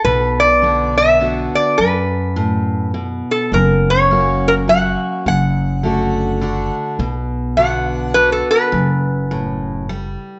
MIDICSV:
0, 0, Header, 1, 4, 480
1, 0, Start_track
1, 0, Key_signature, 2, "minor"
1, 0, Tempo, 578592
1, 39, Time_signature, 3, 2, 24, 8
1, 8623, End_track
2, 0, Start_track
2, 0, Title_t, "Resonator guitar played with a steel bar"
2, 0, Program_c, 0, 25
2, 37, Note_on_c, 0, 71, 78
2, 330, Note_on_c, 0, 74, 89
2, 346, Note_off_c, 0, 71, 0
2, 805, Note_off_c, 0, 74, 0
2, 809, Note_on_c, 0, 76, 89
2, 1286, Note_off_c, 0, 76, 0
2, 1289, Note_on_c, 0, 74, 77
2, 1474, Note_on_c, 0, 71, 66
2, 1481, Note_off_c, 0, 74, 0
2, 2404, Note_off_c, 0, 71, 0
2, 2748, Note_on_c, 0, 69, 67
2, 2931, Note_off_c, 0, 69, 0
2, 2936, Note_on_c, 0, 70, 73
2, 3236, Note_off_c, 0, 70, 0
2, 3236, Note_on_c, 0, 73, 81
2, 3716, Note_on_c, 0, 70, 83
2, 3722, Note_off_c, 0, 73, 0
2, 3763, Note_off_c, 0, 70, 0
2, 3893, Note_on_c, 0, 78, 92
2, 4334, Note_off_c, 0, 78, 0
2, 4380, Note_on_c, 0, 78, 78
2, 5596, Note_off_c, 0, 78, 0
2, 6280, Note_on_c, 0, 78, 73
2, 6755, Note_on_c, 0, 71, 84
2, 6775, Note_off_c, 0, 78, 0
2, 6901, Note_off_c, 0, 71, 0
2, 6904, Note_on_c, 0, 69, 62
2, 7053, Note_off_c, 0, 69, 0
2, 7057, Note_on_c, 0, 71, 74
2, 8464, Note_off_c, 0, 71, 0
2, 8623, End_track
3, 0, Start_track
3, 0, Title_t, "Steel-string acoustic guitar"
3, 0, Program_c, 1, 25
3, 41, Note_on_c, 1, 47, 67
3, 512, Note_on_c, 1, 50, 52
3, 520, Note_on_c, 1, 59, 48
3, 525, Note_on_c, 1, 62, 57
3, 529, Note_on_c, 1, 66, 59
3, 964, Note_off_c, 1, 47, 0
3, 978, Note_off_c, 1, 50, 0
3, 982, Note_off_c, 1, 59, 0
3, 984, Note_off_c, 1, 62, 0
3, 986, Note_off_c, 1, 66, 0
3, 995, Note_on_c, 1, 50, 53
3, 1002, Note_on_c, 1, 59, 51
3, 1007, Note_on_c, 1, 62, 54
3, 1013, Note_on_c, 1, 66, 63
3, 1460, Note_off_c, 1, 50, 0
3, 1463, Note_off_c, 1, 59, 0
3, 1466, Note_off_c, 1, 62, 0
3, 1469, Note_off_c, 1, 66, 0
3, 1478, Note_on_c, 1, 42, 70
3, 1960, Note_on_c, 1, 45, 76
3, 2403, Note_off_c, 1, 42, 0
3, 2422, Note_off_c, 1, 45, 0
3, 2439, Note_on_c, 1, 47, 72
3, 2902, Note_off_c, 1, 47, 0
3, 2930, Note_on_c, 1, 42, 79
3, 3404, Note_on_c, 1, 54, 46
3, 3410, Note_on_c, 1, 58, 53
3, 3412, Note_on_c, 1, 61, 58
3, 3420, Note_on_c, 1, 66, 51
3, 3849, Note_off_c, 1, 42, 0
3, 3864, Note_off_c, 1, 54, 0
3, 3867, Note_off_c, 1, 58, 0
3, 3868, Note_off_c, 1, 61, 0
3, 3872, Note_off_c, 1, 66, 0
3, 3880, Note_on_c, 1, 54, 51
3, 3887, Note_on_c, 1, 58, 47
3, 3889, Note_on_c, 1, 61, 56
3, 3892, Note_on_c, 1, 66, 57
3, 4342, Note_off_c, 1, 54, 0
3, 4346, Note_off_c, 1, 58, 0
3, 4347, Note_off_c, 1, 61, 0
3, 4348, Note_off_c, 1, 66, 0
3, 4366, Note_on_c, 1, 42, 75
3, 4839, Note_on_c, 1, 50, 50
3, 4841, Note_on_c, 1, 57, 47
3, 4849, Note_on_c, 1, 62, 48
3, 4854, Note_on_c, 1, 66, 64
3, 5287, Note_off_c, 1, 42, 0
3, 5302, Note_off_c, 1, 50, 0
3, 5303, Note_off_c, 1, 57, 0
3, 5307, Note_off_c, 1, 62, 0
3, 5309, Note_off_c, 1, 66, 0
3, 5321, Note_on_c, 1, 50, 59
3, 5325, Note_on_c, 1, 57, 57
3, 5333, Note_on_c, 1, 62, 59
3, 5336, Note_on_c, 1, 66, 59
3, 5783, Note_off_c, 1, 50, 0
3, 5785, Note_off_c, 1, 57, 0
3, 5789, Note_off_c, 1, 62, 0
3, 5790, Note_off_c, 1, 66, 0
3, 5803, Note_on_c, 1, 47, 76
3, 6280, Note_on_c, 1, 50, 52
3, 6287, Note_on_c, 1, 59, 47
3, 6293, Note_on_c, 1, 62, 58
3, 6297, Note_on_c, 1, 66, 58
3, 6725, Note_off_c, 1, 47, 0
3, 6742, Note_off_c, 1, 50, 0
3, 6745, Note_off_c, 1, 59, 0
3, 6748, Note_off_c, 1, 62, 0
3, 6751, Note_off_c, 1, 66, 0
3, 6755, Note_on_c, 1, 50, 51
3, 6760, Note_on_c, 1, 59, 47
3, 6766, Note_on_c, 1, 62, 62
3, 6770, Note_on_c, 1, 66, 61
3, 7219, Note_off_c, 1, 50, 0
3, 7222, Note_off_c, 1, 59, 0
3, 7225, Note_off_c, 1, 62, 0
3, 7227, Note_off_c, 1, 66, 0
3, 7235, Note_on_c, 1, 42, 75
3, 7724, Note_on_c, 1, 45, 74
3, 8161, Note_off_c, 1, 42, 0
3, 8184, Note_off_c, 1, 45, 0
3, 8207, Note_on_c, 1, 55, 80
3, 8623, Note_off_c, 1, 55, 0
3, 8623, End_track
4, 0, Start_track
4, 0, Title_t, "Upright bass"
4, 0, Program_c, 2, 32
4, 38, Note_on_c, 2, 35, 72
4, 1221, Note_off_c, 2, 35, 0
4, 1482, Note_on_c, 2, 42, 66
4, 2663, Note_off_c, 2, 42, 0
4, 2918, Note_on_c, 2, 30, 77
4, 4101, Note_off_c, 2, 30, 0
4, 4365, Note_on_c, 2, 30, 74
4, 5545, Note_off_c, 2, 30, 0
4, 5799, Note_on_c, 2, 35, 67
4, 6981, Note_off_c, 2, 35, 0
4, 7239, Note_on_c, 2, 30, 67
4, 8421, Note_off_c, 2, 30, 0
4, 8623, End_track
0, 0, End_of_file